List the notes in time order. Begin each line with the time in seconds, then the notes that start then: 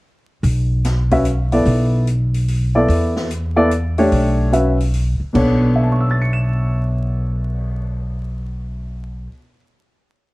0.43 B1, open hi-hat
0.84 snare, closed hi-hat
1.11 C#4 F#4 B4 E5, kick, open hi-hat
1.25 closed hi-hat
1.52 B3 E4 A4 D5, open hi-hat
1.66 B1, open hi-hat
2.07 closed hi-hat
2.34 open hi-hat
2.48 open hi-hat
2.75 B3 E4 A4 D5
2.88 E2, open hi-hat
3.17 snare
3.31 closed hi-hat
3.56 B3 E4 A4 D5
3.71 closed hi-hat
3.98 A3 D4 G4 C#5, open hi-hat
4.12 B1, open hi-hat
4.53 C#4 F#4 B4 E5, closed hi-hat
4.80 open hi-hat
4.94 open hi-hat
5.20 muted upright bass stroke
5.33 B1 B2 B3 D4 A4 C#5, kick, crash
5.62 cymbal swell
5.76 E5
5.83 A5
5.92 C#6
6.00 E6
6.11 A6
6.22 C#7
6.33 E7